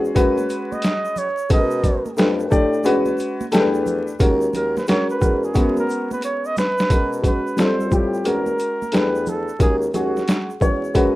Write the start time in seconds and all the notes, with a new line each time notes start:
Already playing: E2 G#3 C#4 F#4 G#4
0.05 shaker
0.15 F#2 G#3 C#4 F#4 B4, kick, closed hi-hat, high conga, shaker
0.38 high conga, shaker
0.49 B4, closed hi-hat, shaker
0.72 D#5, high conga, shaker
0.82 snare, closed hi-hat, shaker
1.05 shaker
1.16 C#5, low conga, shaker
1.38 shaker
1.49 B2 G#3 C#4 F#4 A4 D#5, kick, closed hi-hat, shaker
1.58 A#4
1.71 shaker
1.84 kick, closed hi-hat, high conga, low conga, shaker
2.06 high conga, shaker
2.17 F2 A3 D4 G4 B4, snare, closed hi-hat, shaker
2.40 shaker
2.50 A2 A3 D4 G4 D5, kick, low conga, shaker
2.73 shaker
2.84 E2 G#3 C#4 F#4 B4, closed hi-hat, high conga, shaker
3.06 high conga, shaker
3.18 closed hi-hat, shaker
3.20 shaker
3.41 high conga, shaker
3.52 E2 A3 D4 G4 A4, snare, closed hi-hat, shaker
3.60 B4
3.74 shaker
3.86 low conga, shaker
4.07 shaker
4.19 D#2 G#3 C#4 F#4 A#4, kick, closed hi-hat, shaker
4.41 shaker
4.53 D#2 A#4, closed hi-hat, high conga, low conga, shaker
4.77 B4, snare, high conga, shaker
4.87 G#3 C#4 F#4 A#4 C#5, snare, closed hi-hat, shaker
5.10 B4, shaker
5.20 E2 G#3 C#4 F#4 A#4, kick, low conga, shaker
5.44 G#4, shaker
5.54 F#2 G#3 B3 C#4 F#4, kick, closed hi-hat, high conga, shaker
5.77 A#4, high conga, shaker
5.89 shaker
6.11 B4, high conga, shaker
6.22 C#5, closed hi-hat, shaker
6.45 D#5, shaker
6.57 B4, snare, low conga, shaker
6.78 snare, shaker
6.89 B2 G#3 C#4 F#4 A#4, kick, closed hi-hat, shaker
7.13 shaker
7.22 G#3 C#4 F#4 B4, kick, closed hi-hat, low conga, shaker
7.27 B4
7.47 shaker
7.57 F2 G3 C4 F4 A4 C5, snare, closed hi-hat, shaker
7.80 shaker
7.91 A2 G3 C4 F4 G4, kick, low conga, shaker
7.95 G4
8.14 shaker
8.24 E2 G#3 C#4 F#4 A#4, closed hi-hat, high conga, shaker
8.29 A#4
8.46 high conga, shaker
8.59 closed hi-hat, shaker
8.82 high conga, shaker
8.92 E2 A3 D4 G4 B4, snare, closed hi-hat, shaker
9.15 shaker
9.26 A4, low conga, shaker
9.48 shaker
9.59 D#2 G#3 C#4 F#4 G#4 A#4, kick, closed hi-hat, shaker
9.82 shaker
9.94 D#2 G#3 C#4 F#4 G#4, closed hi-hat, low conga, shaker
10.17 snare, shaker
10.28 snare, closed hi-hat, shaker
10.50 shaker
10.60 E2 G#3 C#4 F#4 C#5, kick, low conga, shaker
10.84 shaker
10.94 F#2 G#3 C#4 F#4 B4, kick, closed hi-hat, high conga, shaker